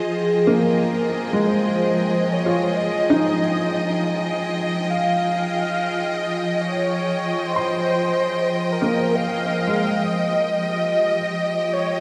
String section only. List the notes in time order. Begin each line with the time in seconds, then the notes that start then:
Already playing: F3 F4 G#4 C5 D#5
0.13 G5
10.03 F3
10.47 F4
10.62 G4